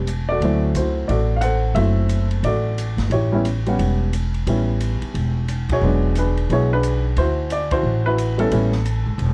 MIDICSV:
0, 0, Header, 1, 5, 480
1, 0, Start_track
1, 0, Tempo, 337458
1, 595, Time_signature, 4, 2, 24, 8
1, 13280, End_track
2, 0, Start_track
2, 0, Title_t, "Grand piano"
2, 0, Program_c, 0, 0
2, 408, Note_on_c, 0, 74, 83
2, 439, Note_on_c, 0, 69, 50
2, 453, Note_on_c, 0, 66, 55
2, 600, Note_on_c, 0, 54, 53
2, 607, Note_on_c, 0, 57, 50
2, 619, Note_on_c, 0, 60, 51
2, 630, Note_on_c, 0, 64, 57
2, 856, Note_off_c, 0, 74, 0
2, 1086, Note_on_c, 0, 72, 58
2, 1101, Note_off_c, 0, 66, 0
2, 1103, Note_off_c, 0, 64, 0
2, 1122, Note_on_c, 0, 66, 47
2, 1125, Note_on_c, 0, 64, 42
2, 1328, Note_off_c, 0, 69, 0
2, 1535, Note_on_c, 0, 74, 66
2, 1547, Note_off_c, 0, 66, 0
2, 1568, Note_on_c, 0, 66, 57
2, 1570, Note_on_c, 0, 69, 53
2, 1574, Note_off_c, 0, 72, 0
2, 1920, Note_off_c, 0, 74, 0
2, 1927, Note_off_c, 0, 54, 0
2, 1931, Note_off_c, 0, 57, 0
2, 1937, Note_off_c, 0, 60, 0
2, 1940, Note_on_c, 0, 77, 62
2, 2003, Note_off_c, 0, 64, 0
2, 2006, Note_on_c, 0, 78, 80
2, 2020, Note_off_c, 0, 69, 0
2, 2025, Note_off_c, 0, 77, 0
2, 2041, Note_on_c, 0, 69, 53
2, 2043, Note_on_c, 0, 72, 54
2, 2464, Note_off_c, 0, 66, 0
2, 2465, Note_off_c, 0, 78, 0
2, 2487, Note_off_c, 0, 69, 0
2, 2487, Note_off_c, 0, 72, 0
2, 2487, Note_on_c, 0, 76, 81
2, 2492, Note_on_c, 0, 54, 52
2, 2504, Note_on_c, 0, 57, 54
2, 2509, Note_on_c, 0, 69, 60
2, 2509, Note_on_c, 0, 72, 51
2, 2522, Note_on_c, 0, 60, 50
2, 2527, Note_on_c, 0, 64, 61
2, 3223, Note_off_c, 0, 76, 0
2, 3415, Note_off_c, 0, 69, 0
2, 3415, Note_off_c, 0, 72, 0
2, 3479, Note_on_c, 0, 74, 77
2, 3503, Note_on_c, 0, 66, 52
2, 3504, Note_on_c, 0, 69, 51
2, 3834, Note_off_c, 0, 54, 0
2, 3840, Note_off_c, 0, 57, 0
2, 3849, Note_off_c, 0, 60, 0
2, 3851, Note_off_c, 0, 64, 0
2, 4200, Note_off_c, 0, 74, 0
2, 4392, Note_off_c, 0, 66, 0
2, 4393, Note_off_c, 0, 69, 0
2, 4440, Note_on_c, 0, 73, 67
2, 4453, Note_on_c, 0, 64, 46
2, 4456, Note_on_c, 0, 67, 50
2, 4724, Note_on_c, 0, 55, 64
2, 4732, Note_off_c, 0, 64, 0
2, 4734, Note_on_c, 0, 59, 50
2, 4742, Note_on_c, 0, 61, 59
2, 4754, Note_on_c, 0, 64, 65
2, 4893, Note_off_c, 0, 55, 0
2, 4898, Note_off_c, 0, 59, 0
2, 4902, Note_off_c, 0, 61, 0
2, 4908, Note_off_c, 0, 64, 0
2, 5215, Note_on_c, 0, 55, 55
2, 5225, Note_on_c, 0, 59, 49
2, 5237, Note_on_c, 0, 61, 51
2, 5245, Note_on_c, 0, 78, 58
2, 5821, Note_off_c, 0, 73, 0
2, 5829, Note_off_c, 0, 67, 0
2, 5840, Note_off_c, 0, 55, 0
2, 5845, Note_off_c, 0, 59, 0
2, 5851, Note_off_c, 0, 61, 0
2, 5855, Note_off_c, 0, 78, 0
2, 6360, Note_on_c, 0, 55, 48
2, 6368, Note_on_c, 0, 59, 41
2, 6371, Note_on_c, 0, 61, 46
2, 6391, Note_on_c, 0, 64, 56
2, 7688, Note_off_c, 0, 55, 0
2, 7692, Note_off_c, 0, 59, 0
2, 7694, Note_off_c, 0, 61, 0
2, 7704, Note_off_c, 0, 64, 0
2, 8134, Note_on_c, 0, 68, 60
2, 8141, Note_on_c, 0, 66, 57
2, 8151, Note_on_c, 0, 73, 75
2, 8280, Note_on_c, 0, 54, 57
2, 8294, Note_on_c, 0, 56, 47
2, 8294, Note_on_c, 0, 59, 48
2, 8314, Note_on_c, 0, 62, 62
2, 8570, Note_off_c, 0, 73, 0
2, 8770, Note_off_c, 0, 68, 0
2, 8773, Note_off_c, 0, 62, 0
2, 8792, Note_on_c, 0, 68, 49
2, 8794, Note_on_c, 0, 62, 49
2, 8801, Note_on_c, 0, 71, 65
2, 8996, Note_off_c, 0, 54, 0
2, 9003, Note_off_c, 0, 56, 0
2, 9003, Note_off_c, 0, 59, 0
2, 9020, Note_off_c, 0, 66, 0
2, 9227, Note_off_c, 0, 71, 0
2, 9248, Note_on_c, 0, 54, 50
2, 9255, Note_on_c, 0, 56, 44
2, 9256, Note_off_c, 0, 68, 0
2, 9260, Note_on_c, 0, 59, 46
2, 9275, Note_on_c, 0, 64, 55
2, 9277, Note_on_c, 0, 68, 56
2, 9284, Note_on_c, 0, 73, 77
2, 9294, Note_on_c, 0, 66, 55
2, 9509, Note_off_c, 0, 54, 0
2, 9513, Note_off_c, 0, 56, 0
2, 9516, Note_off_c, 0, 59, 0
2, 9523, Note_off_c, 0, 64, 0
2, 9542, Note_off_c, 0, 68, 0
2, 9546, Note_off_c, 0, 62, 0
2, 9563, Note_on_c, 0, 68, 53
2, 9565, Note_off_c, 0, 73, 0
2, 9567, Note_on_c, 0, 62, 52
2, 9574, Note_on_c, 0, 71, 87
2, 10001, Note_off_c, 0, 71, 0
2, 10166, Note_off_c, 0, 68, 0
2, 10168, Note_off_c, 0, 62, 0
2, 10168, Note_off_c, 0, 66, 0
2, 10213, Note_on_c, 0, 72, 80
2, 10231, Note_on_c, 0, 64, 56
2, 10233, Note_on_c, 0, 66, 57
2, 10652, Note_off_c, 0, 72, 0
2, 10700, Note_on_c, 0, 74, 77
2, 10965, Note_off_c, 0, 74, 0
2, 10970, Note_off_c, 0, 64, 0
2, 10980, Note_off_c, 0, 66, 0
2, 10981, Note_on_c, 0, 72, 83
2, 10991, Note_on_c, 0, 64, 60
2, 11001, Note_on_c, 0, 66, 61
2, 11459, Note_off_c, 0, 64, 0
2, 11463, Note_on_c, 0, 71, 90
2, 11465, Note_off_c, 0, 66, 0
2, 11472, Note_off_c, 0, 72, 0
2, 11480, Note_on_c, 0, 64, 54
2, 11486, Note_on_c, 0, 66, 53
2, 11905, Note_off_c, 0, 71, 0
2, 11914, Note_on_c, 0, 55, 52
2, 11920, Note_on_c, 0, 59, 54
2, 11921, Note_off_c, 0, 64, 0
2, 11927, Note_on_c, 0, 61, 51
2, 11942, Note_on_c, 0, 64, 60
2, 11946, Note_on_c, 0, 69, 87
2, 11952, Note_off_c, 0, 61, 0
2, 11973, Note_on_c, 0, 61, 50
2, 12088, Note_off_c, 0, 66, 0
2, 12098, Note_off_c, 0, 55, 0
2, 12111, Note_off_c, 0, 61, 0
2, 12114, Note_off_c, 0, 59, 0
2, 12119, Note_on_c, 0, 55, 61
2, 12121, Note_off_c, 0, 64, 0
2, 12132, Note_on_c, 0, 61, 57
2, 12135, Note_on_c, 0, 59, 51
2, 12142, Note_on_c, 0, 64, 67
2, 12385, Note_off_c, 0, 55, 0
2, 12392, Note_off_c, 0, 61, 0
2, 12393, Note_off_c, 0, 59, 0
2, 12396, Note_off_c, 0, 64, 0
2, 13280, Note_off_c, 0, 69, 0
2, 13280, End_track
3, 0, Start_track
3, 0, Title_t, "Upright bass"
3, 0, Program_c, 1, 32
3, 0, Note_on_c, 1, 28, 74
3, 538, Note_off_c, 1, 28, 0
3, 576, Note_on_c, 1, 38, 71
3, 1031, Note_off_c, 1, 38, 0
3, 1059, Note_on_c, 1, 37, 65
3, 1513, Note_off_c, 1, 37, 0
3, 1547, Note_on_c, 1, 33, 73
3, 2463, Note_off_c, 1, 33, 0
3, 2482, Note_on_c, 1, 30, 73
3, 3409, Note_off_c, 1, 30, 0
3, 3457, Note_on_c, 1, 33, 73
3, 4188, Note_off_c, 1, 33, 0
3, 4225, Note_on_c, 1, 31, 60
3, 4400, Note_off_c, 1, 31, 0
3, 4408, Note_on_c, 1, 33, 79
3, 5333, Note_off_c, 1, 33, 0
3, 5389, Note_on_c, 1, 28, 80
3, 6304, Note_off_c, 1, 28, 0
3, 6351, Note_on_c, 1, 33, 81
3, 7076, Note_off_c, 1, 33, 0
3, 7316, Note_on_c, 1, 28, 71
3, 8039, Note_off_c, 1, 28, 0
3, 8088, Note_on_c, 1, 35, 55
3, 8261, Note_off_c, 1, 35, 0
3, 8271, Note_on_c, 1, 28, 76
3, 9185, Note_off_c, 1, 28, 0
3, 9236, Note_on_c, 1, 35, 70
3, 10148, Note_off_c, 1, 35, 0
3, 10194, Note_on_c, 1, 38, 73
3, 11107, Note_off_c, 1, 38, 0
3, 11139, Note_on_c, 1, 33, 73
3, 12060, Note_off_c, 1, 33, 0
3, 12112, Note_on_c, 1, 33, 80
3, 12837, Note_off_c, 1, 33, 0
3, 12892, Note_on_c, 1, 32, 60
3, 13048, Note_off_c, 1, 32, 0
3, 13056, Note_on_c, 1, 28, 83
3, 13280, Note_off_c, 1, 28, 0
3, 13280, End_track
4, 0, Start_track
4, 0, Title_t, "Muted upright bass strokes"
4, 7141, Note_on_c, 9, 29, 31
4, 7284, Note_off_c, 9, 29, 0
4, 13280, End_track
5, 0, Start_track
5, 0, Title_t, "Drums"
5, 103, Note_on_c, 9, 44, 57
5, 103, Note_on_c, 9, 51, 58
5, 245, Note_off_c, 9, 44, 0
5, 245, Note_off_c, 9, 51, 0
5, 595, Note_on_c, 9, 51, 46
5, 737, Note_off_c, 9, 51, 0
5, 1064, Note_on_c, 9, 44, 49
5, 1064, Note_on_c, 9, 51, 53
5, 1206, Note_off_c, 9, 44, 0
5, 1206, Note_off_c, 9, 51, 0
5, 1549, Note_on_c, 9, 51, 49
5, 1691, Note_off_c, 9, 51, 0
5, 2009, Note_on_c, 9, 44, 52
5, 2009, Note_on_c, 9, 51, 58
5, 2152, Note_off_c, 9, 44, 0
5, 2152, Note_off_c, 9, 51, 0
5, 2497, Note_on_c, 9, 51, 50
5, 2639, Note_off_c, 9, 51, 0
5, 2976, Note_on_c, 9, 44, 46
5, 2976, Note_on_c, 9, 51, 53
5, 3118, Note_off_c, 9, 44, 0
5, 3118, Note_off_c, 9, 51, 0
5, 3282, Note_on_c, 9, 51, 40
5, 3424, Note_off_c, 9, 51, 0
5, 3465, Note_on_c, 9, 51, 53
5, 3607, Note_off_c, 9, 51, 0
5, 3953, Note_on_c, 9, 44, 52
5, 3953, Note_on_c, 9, 51, 60
5, 4095, Note_off_c, 9, 44, 0
5, 4095, Note_off_c, 9, 51, 0
5, 4240, Note_on_c, 9, 51, 37
5, 4241, Note_on_c, 9, 38, 39
5, 4382, Note_off_c, 9, 51, 0
5, 4383, Note_off_c, 9, 38, 0
5, 4420, Note_on_c, 9, 51, 47
5, 4562, Note_off_c, 9, 51, 0
5, 4905, Note_on_c, 9, 44, 43
5, 4905, Note_on_c, 9, 51, 56
5, 5048, Note_off_c, 9, 44, 0
5, 5048, Note_off_c, 9, 51, 0
5, 5211, Note_on_c, 9, 51, 35
5, 5353, Note_off_c, 9, 51, 0
5, 5393, Note_on_c, 9, 51, 51
5, 5536, Note_off_c, 9, 51, 0
5, 5875, Note_on_c, 9, 44, 46
5, 5875, Note_on_c, 9, 51, 56
5, 6017, Note_off_c, 9, 44, 0
5, 6017, Note_off_c, 9, 51, 0
5, 6176, Note_on_c, 9, 51, 36
5, 6318, Note_off_c, 9, 51, 0
5, 6357, Note_on_c, 9, 51, 56
5, 6500, Note_off_c, 9, 51, 0
5, 6833, Note_on_c, 9, 44, 41
5, 6833, Note_on_c, 9, 51, 53
5, 6976, Note_off_c, 9, 44, 0
5, 6976, Note_off_c, 9, 51, 0
5, 7137, Note_on_c, 9, 51, 39
5, 7279, Note_off_c, 9, 51, 0
5, 7324, Note_on_c, 9, 51, 46
5, 7466, Note_off_c, 9, 51, 0
5, 7799, Note_on_c, 9, 44, 43
5, 7799, Note_on_c, 9, 51, 57
5, 7941, Note_off_c, 9, 44, 0
5, 7941, Note_off_c, 9, 51, 0
5, 8097, Note_on_c, 9, 36, 68
5, 8097, Note_on_c, 9, 51, 66
5, 8239, Note_off_c, 9, 36, 0
5, 8239, Note_off_c, 9, 51, 0
5, 8751, Note_on_c, 9, 44, 49
5, 8751, Note_on_c, 9, 51, 51
5, 8894, Note_off_c, 9, 44, 0
5, 8894, Note_off_c, 9, 51, 0
5, 9065, Note_on_c, 9, 51, 37
5, 9207, Note_off_c, 9, 51, 0
5, 9243, Note_on_c, 9, 51, 47
5, 9385, Note_off_c, 9, 51, 0
5, 9717, Note_on_c, 9, 44, 59
5, 9717, Note_on_c, 9, 51, 58
5, 9859, Note_off_c, 9, 44, 0
5, 9859, Note_off_c, 9, 51, 0
5, 10191, Note_on_c, 9, 51, 51
5, 10334, Note_off_c, 9, 51, 0
5, 10669, Note_on_c, 9, 44, 47
5, 10669, Note_on_c, 9, 51, 56
5, 10811, Note_off_c, 9, 44, 0
5, 10811, Note_off_c, 9, 51, 0
5, 10967, Note_on_c, 9, 51, 62
5, 10974, Note_on_c, 9, 36, 69
5, 11109, Note_off_c, 9, 51, 0
5, 11116, Note_off_c, 9, 36, 0
5, 11638, Note_on_c, 9, 44, 59
5, 11638, Note_on_c, 9, 51, 55
5, 11780, Note_off_c, 9, 44, 0
5, 11780, Note_off_c, 9, 51, 0
5, 11929, Note_on_c, 9, 51, 43
5, 12071, Note_off_c, 9, 51, 0
5, 12111, Note_on_c, 9, 51, 57
5, 12254, Note_off_c, 9, 51, 0
5, 12410, Note_on_c, 9, 38, 32
5, 12552, Note_off_c, 9, 38, 0
5, 12595, Note_on_c, 9, 44, 42
5, 12595, Note_on_c, 9, 51, 51
5, 12737, Note_off_c, 9, 44, 0
5, 12737, Note_off_c, 9, 51, 0
5, 13071, Note_on_c, 9, 51, 47
5, 13213, Note_off_c, 9, 51, 0
5, 13280, End_track
0, 0, End_of_file